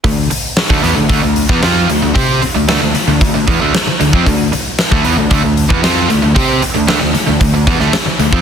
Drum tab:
HH |o-o-o-o-o-o-o-o-|o-o-o-o-o-o-o-o-|o-o-o-o-o-o-o-o-|o-o-o-o-o-o-o-o-|
SD |----o-o----oo---|----o-------o---|----o-------o---|----o------oo---|
BD |o----o--o--o----|o-------o-o----o|o----o--o--o----|o-------o-o----o|